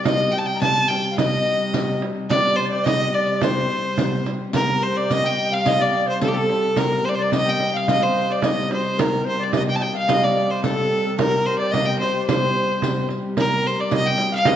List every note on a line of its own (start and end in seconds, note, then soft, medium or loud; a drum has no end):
0.00 0.67 A#4 medium
0.00 1.02 C5 medium
0.00 0.10 D5 medium
0.04 4.56 C3 medium
0.04 4.55 G3 medium
0.04 1.18 D#5 medium
0.04 0.35 D#5 medium
0.04 0.33 D#5 loud
0.04 riq medium
0.04 frame drum medium
0.32 0.40 G5 medium
0.32 0.46 G5 medium
0.32 0.54 G5 medium
0.32 riq soft
0.38 0.47 A5 medium
0.46 0.61 G5 loud
0.46 2.02 G5 medium
0.55 0.62 A#5 medium
0.61 0.93 A5 medium
0.61 2.06 A5 medium
0.61 0.90 A5 loud
0.61 riq medium
0.61 frame drum medium
0.88 1.17 G5 loud
0.88 frame drum medium
1.11 1.20 F5 medium
1.18 1.99 D#5 loud
1.18 1.73 D#5 medium
1.18 2.03 D#5 medium
1.18 riq medium
1.18 frame drum medium
1.47 riq soft
1.73 2.37 D#5 medium
1.73 riq medium
1.73 frame drum medium
2.02 frame drum medium
2.30 2.58 D5 loud
2.30 2.61 D5 medium
2.30 2.72 D5 loud
2.30 riq medium
2.30 frame drum medium
2.56 2.70 C5 medium
2.56 3.40 C5 medium
2.56 2.67 C5 medium
2.56 riq soft
2.65 2.74 D5 medium
2.71 2.88 C5 medium
2.71 2.86 D5 loud
2.71 2.92 D5 medium
2.84 3.15 D#5 loud
2.84 4.65 D#5 medium
2.84 3.16 D#5 medium
2.84 riq medium
2.84 frame drum medium
3.14 3.44 D5 loud
3.14 3.42 D5 medium
3.41 4.82 C5 medium
3.41 4.26 C5 loud
3.41 4.23 C5 medium
3.41 riq medium
3.41 frame drum loud
3.70 riq soft
3.98 riq medium
3.98 frame drum medium
4.26 riq soft
4.26 frame drum medium
4.53 8.98 C3 medium
4.53 8.98 G3 medium
4.53 6.29 A#4 medium
4.53 4.84 A#4 loud
4.53 4.84 A#4 medium
4.53 riq medium
4.53 frame drum medium
4.82 5.12 C5 medium
4.82 4.98 C5 medium
4.82 6.07 C5 medium
4.82 frame drum soft
4.96 5.13 D5 loud
4.96 5.16 D5 medium
5.10 5.65 D#5 medium
5.10 5.51 D#5 medium
5.10 5.27 D#5 loud
5.10 riq medium
5.10 frame drum medium
5.24 6.79 G5 medium
5.24 5.55 G5 loud
5.52 5.67 F5 medium
5.52 7.18 F5 medium
5.52 5.69 F5 loud
5.65 5.87 D#5 loud
5.65 5.78 D#5 medium
5.65 5.83 D#5 loud
5.65 riq medium
5.65 frame drum medium
5.78 6.08 D5 medium
5.78 7.18 D5 medium
5.78 6.08 D5 loud
5.94 frame drum soft
6.06 6.20 C5 medium
6.06 7.05 C5 medium
6.06 6.22 C5 medium
6.21 6.33 A4 medium
6.21 6.29 A4 loud
6.21 6.34 A4 medium
6.21 riq medium
6.21 frame drum medium
6.28 6.36 G4 medium
6.33 6.78 A4 medium
6.33 6.83 A4 medium
6.33 6.79 A4 loud
6.49 frame drum medium
6.76 7.06 A#4 medium
6.76 8.89 A#4 medium
6.76 7.07 A#4 loud
6.76 riq medium
6.76 frame drum medium
7.04 7.10 C5 medium
7.04 8.01 C5 medium
7.04 7.10 C5 loud
7.09 7.14 C5 medium
7.09 7.17 D5 medium
7.15 7.24 C5 medium
7.15 7.33 D5 medium
7.15 7.38 D5 medium
7.22 7.34 D5 medium
7.31 7.75 D#5 medium
7.31 7.88 D#5 medium
7.31 riq medium
7.31 frame drum medium
7.36 7.50 D#5 loud
7.46 9.01 G5 medium
7.46 7.78 G5 loud
7.60 frame drum medium
7.73 7.86 F5 medium
7.73 9.40 F5 medium
7.73 7.89 F5 medium
7.86 8.02 D#5 medium
7.86 8.36 D#5 medium
7.86 8.04 D#5 loud
7.86 riq medium
7.86 frame drum medium
8.01 8.42 C5 medium
8.01 9.26 C5 medium
8.01 8.33 C5 medium
8.30 8.50 D5 medium
8.30 8.47 D5 medium
8.42 8.71 D#5 medium
8.42 9.46 D#5 medium
8.42 8.72 D#5 loud
8.42 riq medium
8.42 frame drum medium
8.69 8.99 C5 medium
8.69 9.02 C5 medium
8.69 riq soft
8.69 frame drum medium
8.98 13.39 C3 medium
8.98 13.39 G3 medium
8.98 9.26 A#4 medium
8.98 10.71 A#4 medium
8.98 9.27 A#4 loud
8.98 riq medium
8.98 frame drum medium
9.25 9.38 C5 medium
9.25 10.50 C5 medium
9.25 9.45 C5 medium
9.25 frame drum soft
9.39 9.54 D5 medium
9.39 9.58 D5 medium
9.43 9.55 D5 medium
9.52 9.78 D#5 medium
9.52 10.08 D#5 medium
9.52 riq medium
9.52 frame drum medium
9.57 9.62 D#5 loud
9.67 9.80 G5 medium
9.67 9.77 G5 medium
9.76 9.85 G5 medium
9.76 9.84 A5 medium
9.80 11.35 G5 medium
9.80 9.96 G5 loud
9.80 frame drum medium
9.93 10.09 F5 medium
9.93 11.61 F5 medium
9.98 10.11 F5 loud
10.07 10.39 D#5 medium
10.07 10.29 D#5 medium
10.07 10.25 D#5 loud
10.07 riq medium
10.07 frame drum medium
10.23 10.30 D5 medium
10.23 10.52 D5 medium
10.30 10.37 D5 medium
10.37 11.60 D5 medium
10.37 frame drum soft
10.50 10.63 C5 medium
10.50 11.46 C5 medium
10.63 11.01 A4 medium
10.63 11.15 A4 loud
10.63 11.06 A4 medium
10.63 riq medium
10.63 frame drum medium
11.04 11.17 A4 medium
11.04 11.26 A4 medium
11.18 11.61 A#4 medium
11.18 11.47 A#4 loud
11.18 13.32 A#4 medium
11.18 riq medium
11.18 frame drum medium
11.46 11.58 C5 loud
11.46 12.00 C5 medium
11.46 frame drum soft
11.58 11.73 D5 medium
11.58 11.65 D5 medium
11.58 11.80 D5 medium
11.63 11.69 C5 medium
11.67 11.75 D5 medium
11.72 11.87 D#5 loud
11.72 12.27 D#5 medium
11.72 11.81 D#5 medium
11.72 riq medium
11.72 frame drum medium
11.80 11.88 F5 medium
11.85 12.01 D#5 medium
11.85 11.98 G5 medium
11.85 13.43 G5 medium
11.99 12.25 C5 medium
11.99 12.28 C5 medium
11.99 12.27 C5 medium
11.99 frame drum medium
12.21 13.79 D5 medium
12.26 13.05 C5 loud
12.26 14.26 C5 medium
12.26 13.07 C5 medium
12.26 riq medium
12.26 frame drum medium
12.56 frame drum soft
12.82 riq medium
12.82 frame drum medium
13.09 riq soft
13.09 frame drum medium
13.37 14.56 C3 medium
13.37 14.56 G3 medium
13.37 14.56 A#4 medium
13.37 13.68 A#4 loud
13.37 riq medium
13.37 frame drum medium
13.64 13.82 C5 loud
13.64 frame drum soft
13.80 13.97 D5 medium
13.80 13.93 D5 medium
13.91 14.45 D#5 medium
13.91 14.08 D#5 loud
13.91 riq medium
13.91 frame drum medium
14.06 14.56 G5 medium
14.06 14.33 G5 loud
14.18 frame drum medium
14.32 14.56 F5 medium
14.32 14.49 F5 loud
14.45 14.56 D#5 loud
14.45 riq medium
14.45 frame drum loud